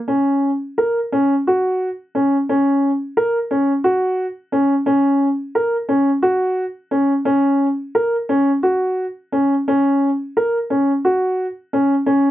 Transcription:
grand piano
0.08 C#4
0.78 A#4
1.12 C#4
1.47 F#4
2.15 C#4
2.49 C#4
3.17 A#4
3.51 C#4
3.84 F#4
4.52 C#4
4.86 C#4
5.55 A#4
5.89 C#4
6.22 F#4
6.91 C#4
7.25 C#4
7.95 A#4
8.29 C#4
8.63 F#4
9.32 C#4
9.68 C#4
10.37 A#4
10.70 C#4
11.05 F#4
11.73 C#4
12.06 C#4

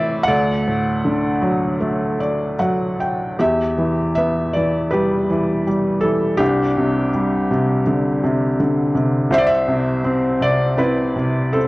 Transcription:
felt piano
Already playing: A2 E3 C4 E4 B4 C5 D5 E5
0.24 F#5
0.28 D2 A4 D5
0.67 A2
1.05 D3
1.42 F#3
1.80 A3
2.20 D5
2.59 F#3 F#5
3.00 G5
3.39 E2 G4 E5
3.78 E3
4.15 B3 E5
4.53 E3 D5
4.91 G3 G4 B4
5.30 E3
5.67 G3
6.01 E3 A4
6.37 C2 D4 G4
6.77 C3
7.15 G3
7.51 C3
7.87 D3
8.23 C3
8.60 D3
8.95 C3
9.30 C2 C5 E5
9.38 D5
9.47 E5
9.68 C3
10.04 C4
10.41 C3 D5
10.78 C4 E4 B4
11.16 C3
11.53 C4 A4

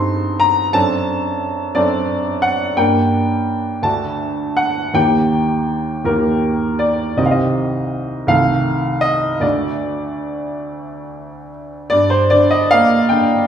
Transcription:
grand piano
Already playing: G2 C4 D#4 A4 A5 C6
0.40 A#5
0.73 F#2 C4 D4 A4 A5
1.75 F#2 C4 D4 A4 D5
2.42 F#5
2.77 G2 A#3 D4 A#4 G5
3.83 D2 A3 D4 F#4 A5
4.57 F#5
4.94 D#2 D#3 A#3 G4 G5
6.05 D#2 D#3 A#3 G4 A#4
6.79 D5
7.17 C2 D#3 C4 G4 D#5
7.26 F5
7.31 D#5
8.27 C2 D#3 A3 A4 F5
9.01 D#5
9.40 D2 D3 A3 F#4 D5
11.90 G2 D5
12.10 C5
12.30 D3 D5
12.51 D#5
12.71 A#3 F5
13.09 D3 G5

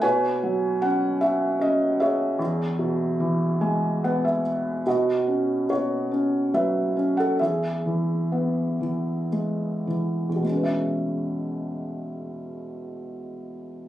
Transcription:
felt piano
0.02 B2 B4 C#5 G#5
0.43 F#3
0.82 C#4 F#5
1.21 F#4 E5
1.60 C#4 D#5
2.00 G#4 C#5 E5
2.39 E2
2.79 B2
3.20 E3
3.61 G#3 G#5
4.04 B3 F#5
4.25 E5
4.86 B2 F#4 D#5
5.27 C#4
5.69 B2 F#4 C#5
6.11 C#4
6.54 F#3 B4 E5
6.97 C#4
7.17 A4 F#5
7.39 E2 G#4 E5
7.86 E3
8.32 B3
8.81 E3
9.32 G#3
9.87 E3
10.29 E2
10.36 B2
10.43 G#3
10.50 C#4
10.57 B4
10.63 E5

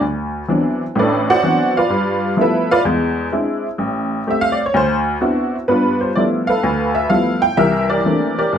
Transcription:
honky-tonk piano
0.01 D2
0.48 E3 F#3 B3 C4 D4
0.96 A1 A2 D4 D5
1.00 A4 B4
1.30 F#4 C5 D5 F#5
1.43 E3 F#3 B3 C4 D4
1.77 F4 B4 D5 F5
1.90 G2
2.37 F3 G3 A3 B3 E4
2.41 E4 A4 B4 E5
2.71 F4 B4 D5 F5
2.85 E2 G#3
3.32 G#3 C4 D4 E4
3.78 A1
4.27 A3 C4 G4 E5
4.41 F5
4.52 D5
4.66 C#5
4.74 D2 C5
5.21 B3 C4 D4 E4 F#4
5.68 G2 B3 D4 F4 B4
6.01 C5
6.15 F3 G3 A3 B3 E4 D5
6.47 A4 B4 F5
6.63 D2
6.95 E5
7.09 F3 G3 A3 B3 E4 F5
7.42 G5
7.57 C2 E3 G4 A#4 E5
7.89 G4 A#4 D5
8.05 E3 A3 A#3 C4 D4
8.38 G4 A#4 D5
8.53 G1

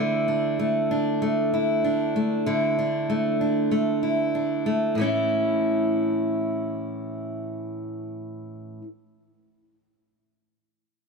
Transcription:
steel-string acoustic guitar
Already playing: D3 A3 E4
0.28 D4
0.59 A3
0.91 D4
1.22 A3
1.54 E4
1.84 D4
2.16 A3
2.46 D3 E4
2.79 D4
3.10 A3
3.41 D4
3.71 A3
4.03 E4
4.35 D4
4.66 A3
4.95 A2 E3
4.99 A3 C#4 E4

